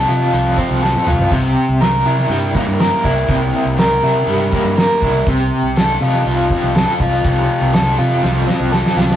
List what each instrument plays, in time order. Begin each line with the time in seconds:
Already playing: overdriven electric guitar C3 C4 A4
0.08 fingered electric bass C3, overdriven electric guitar F4
0.33 fingered electric bass C2, overdriven electric guitar F3, open hi-hat
0.58 overdriven electric guitar C4, kick
0.71 fingered electric bass C2
0.82 overdriven electric guitar A4, snare
0.95 high tom
1.07 fingered electric bass C2, overdriven electric guitar F4, mid tom
1.19 floor tom
1.31 fingered electric bass C2, overdriven electric guitar C3, kick, open hi-hat, splash
1.69 fingered electric bass C2
1.81 overdriven electric guitar A#4, snare, open hi-hat
2.06 fingered electric bass C3, overdriven electric guitar E4
2.19 snare
2.29 fingered electric bass G2, overdriven electric guitar G3, open hi-hat
2.55 overdriven electric guitar A#3, kick
2.67 fingered electric bass G2
2.79 overdriven electric guitar A#4, snare, open hi-hat
3.04 fingered electric bass C2, overdriven electric guitar E4, kick
3.28 fingered electric bass C2, overdriven electric guitar C3, kick, open hi-hat
3.65 fingered electric bass C2
3.78 overdriven electric guitar A#4, snare, open hi-hat
4.03 fingered electric bass C3, overdriven electric guitar E4, snare
4.27 fingered electric bass G2, overdriven electric guitar G3, open hi-hat
4.53 overdriven electric guitar A#3, kick
4.64 fingered electric bass G2
4.77 overdriven electric guitar A#4, snare, open hi-hat
5.02 fingered electric bass C2, overdriven electric guitar E4, kick
5.27 fingered electric bass C2, overdriven electric guitar C3, kick, open hi-hat
5.63 fingered electric bass C2
5.76 overdriven electric guitar A4, snare, open hi-hat
6.01 fingered electric bass C3, overdriven electric guitar F4
6.14 snare
6.25 fingered electric bass C2, overdriven electric guitar F3, open hi-hat
6.50 overdriven electric guitar C4, kick
6.62 fingered electric bass C2
6.75 overdriven electric guitar A4, snare, open hi-hat
7.00 fingered electric bass C2, overdriven electric guitar F4, kick
7.24 fingered electric bass C2, overdriven electric guitar C3, kick, open hi-hat
7.61 fingered electric bass C2
7.73 overdriven electric guitar A4, snare, open hi-hat
7.98 fingered electric bass C3, overdriven electric guitar F4
8.23 fingered electric bass C2, overdriven electric guitar F3, snare
8.48 overdriven electric guitar C4, snare
8.60 fingered electric bass C2
8.72 overdriven electric guitar A4, snare
8.86 snare
8.96 fingered electric bass C2, overdriven electric guitar F4, snare
9.11 snare